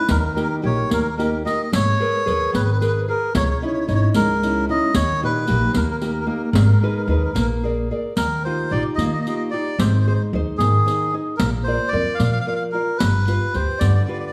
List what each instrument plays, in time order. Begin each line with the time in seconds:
0.08 upright bass D#2, nylon-string guitar D#3, melodica A#4, riq
0.19 melodica A#4
0.25 melodica A#4
0.34 nylon-string guitar A#3 D#4 G4, melodica A#4, riq
0.43 melodica A#4
0.49 melodica A#4
0.62 upright bass A#1, nylon-string guitar A#3 D#4 G4, melodica C#5
0.90 upright bass D#2, nylon-string guitar A#3, melodica A#4, riq
1.02 melodica A#4
1.09 melodica A#4
1.17 nylon-string guitar A#3 D#4 G4, melodica A#4, riq
1.24 melodica A#4
1.32 melodica A#4
1.45 nylon-string guitar A#3 D#4 G4, melodica D#5, riq
1.63 melodica D#5
1.72 upright bass G#1, nylon-string guitar G#3, melodica C#5, riq
2.00 nylon-string guitar G#4 A#4 B4
2.26 upright bass D#2, nylon-string guitar G#4 A#4 B4, riq
2.53 upright bass G#1, nylon-string guitar D#3, melodica B4, riq
2.65 melodica B4
2.72 melodica B4
2.79 nylon-string guitar G#4 A#4 B4, melodica B4, riq
2.86 melodica B4
2.96 melodica B4
3.08 nylon-string guitar G#4 A#4 B4, melodica A#4
3.35 upright bass C#2, nylon-string guitar C#3, melodica C#5, riq
3.46 melodica C#5
3.51 melodica C#5
3.59 nylon-string guitar C#4 D#4, melodica C#5
3.63 nylon-string guitar E4
3.67 melodica C#5
3.73 melodica C#5
3.81 melodica C#5
3.87 upright bass G#1, nylon-string guitar C#4 D#4 E4, melodica C#5, riq
3.95 melodica C#5
4.02 melodica C#5
4.14 upright bass C#2, nylon-string guitar G#3, melodica A#4, riq
4.43 nylon-string guitar C#4 D#4 E4, riq
4.69 nylon-string guitar C#4 D#4 E4, melodica D#5
4.94 upright bass D#2, nylon-string guitar D#3, melodica C#5, riq
5.22 nylon-string guitar A#2 D#4 G4, melodica B4
5.47 upright bass A#1, nylon-string guitar A#3 D#4 G4, riq
5.73 upright bass D#2, nylon-string guitar A#3, melodica A#4, riq
5.83 melodica A#4
5.90 melodica A#4
5.98 nylon-string guitar A#3 D#4 G4, melodica A#4, riq
6.06 melodica A#4
6.12 melodica A#4
6.20 melodica A#4
6.27 nylon-string guitar A#3 D#4 G4, melodica A#4
6.36 melodica A#4
6.44 melodica A#4
6.51 upright bass G#1, nylon-string guitar G#3, melodica A#4
6.55 melodica A#4, riq
6.65 melodica A#4
6.72 melodica A#4
6.80 nylon-string guitar D#4 G#4 B4, melodica A#4
6.88 melodica A#4
6.96 melodica A#4
7.04 upright bass D#2, melodica A#4
7.09 nylon-string guitar D#4 G#4 B4, melodica A#4
7.16 melodica A#4
7.24 melodica A#4
7.33 upright bass A#1, nylon-string guitar A#3, melodica A#4, riq
7.40 melodica A#4
7.64 nylon-string guitar G#4 A#4 D5
7.91 nylon-string guitar G#4 A#4 D5
8.17 upright bass D#2, nylon-string guitar D#3, melodica A#4, riq
8.44 nylon-string guitar D#4 F4 G4, melodica C5
8.71 upright bass A#1, nylon-string guitar D#4 F4 G4, melodica D5
8.95 upright bass D#3, melodica D#5, riq
9.00 nylon-string guitar A#3
9.06 melodica D#5
9.12 melodica D#5
9.21 melodica D#5
9.27 nylon-string guitar D#4 F4 G4, melodica D#5, riq
9.36 melodica D#5
9.51 nylon-string guitar D#4 F4 G4, melodica D5
9.79 upright bass G#1, nylon-string guitar G#3, melodica C5, riq
9.86 melodica C5
9.94 melodica C5
10.00 melodica C5
10.07 nylon-string guitar D#4 G#4 C5, melodica C5
10.15 melodica C5
10.33 upright bass D#2, nylon-string guitar D#4 G#4 C5
10.58 upright bass G#2, nylon-string guitar D#3, melodica G#4, riq
10.86 nylon-string guitar D#4 G#4 C5, riq
11.14 nylon-string guitar D#4 G#4 C5
11.37 upright bass A#1, nylon-string guitar A#3, melodica A#4, riq
11.64 nylon-string guitar F4 A#4, melodica C5
11.68 nylon-string guitar D5
11.88 melodica D5
11.93 upright bass F2, nylon-string guitar F4 A#4 D5
12.15 melodica F5
12.19 upright bass A#2, nylon-string guitar F3, riq
12.24 melodica F5
12.32 melodica F5
12.40 melodica F5
12.47 nylon-string guitar F4 A#4 D5, melodica F5
12.55 melodica F5
12.72 nylon-string guitar F4 A#4 D5, melodica A#4
12.98 upright bass G1, nylon-string guitar G3, melodica B4, riq
13.28 nylon-string guitar F4 G4 B4, riq
13.54 upright bass D2, nylon-string guitar F4 G4 B4, melodica C5, riq
13.79 upright bass G2, nylon-string guitar D3, melodica D5, riq
13.88 melodica D5
13.95 melodica D5
14.05 nylon-string guitar F4 G4, melodica D5
14.09 nylon-string guitar B4, melodica D5
14.19 melodica D5
14.27 melodica D5